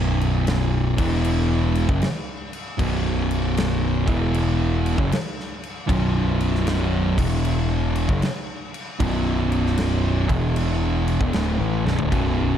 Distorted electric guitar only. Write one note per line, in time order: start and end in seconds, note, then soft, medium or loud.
0.00 0.96 B1 medium
0.00 0.97 F#2 loud
0.00 0.97 B2 loud
0.99 1.88 E2 loud
0.99 1.88 B2 loud
0.99 1.89 E3 loud
1.88 2.01 F#2 medium
1.88 2.01 C#3 medium
2.78 4.05 B1 medium
2.78 4.06 F#2 loud
2.78 4.06 B2 loud
4.06 4.96 E2 loud
4.06 4.97 B2 medium
4.06 4.97 E3 loud
4.97 5.10 F#2 medium
4.97 5.10 C#3 medium
5.87 7.15 B1 medium
5.87 7.16 F#2 loud
5.87 7.16 B2 loud
7.18 8.08 E2 medium
7.18 8.08 B2 loud
7.18 8.08 E3 loud
8.09 8.21 F#2 medium
8.09 8.22 C#3 medium
9.00 10.27 B1 medium
9.00 10.28 F#2 loud
9.00 10.28 B2 loud
10.29 11.19 E2 medium
10.29 11.20 B2 medium
10.29 11.20 E3 loud
11.21 11.33 E2 medium
11.21 11.34 B2 medium
11.34 11.58 D2 medium
11.34 11.58 A2 loud
11.59 11.84 A2 medium
11.59 11.84 E3 loud
11.86 11.98 B1 medium
11.86 11.98 F#2 loud
12.00 12.11 D2 medium
12.00 12.11 A2 loud
12.11 12.58 B1 loud
12.11 12.58 F#2 loud
12.11 12.58 B2 loud